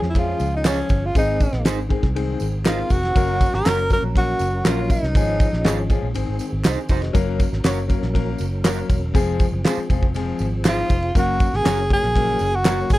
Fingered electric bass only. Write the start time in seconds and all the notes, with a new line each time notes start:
0.02 F2
0.40 C#2
0.90 G1
1.15 G#1
1.53 A#1
1.65 G#1
2.03 C2
2.41 G#1
2.90 F1
3.16 F#1
3.53 G#1
3.66 F#1
4.02 A#1
4.40 F#1
4.65 A#1
5.03 C2
5.15 G#1
5.53 A#1
5.65 G#1
6.03 A#1
6.16 G#1
6.28 G#1
6.53 G#1
6.65 C2
6.90 F1
7.15 F#1
7.53 G#1
7.65 F#1
8.03 A#1
8.40 F#1
8.90 E1
9.15 F1
9.52 F#1
9.77 muted fingered electric bass stroke
9.90 F1
10.40 G#1
10.90 F1
11.16 F#1
11.53 G#1
11.65 F#1
12.03 A#1
12.41 F#1
12.90 G1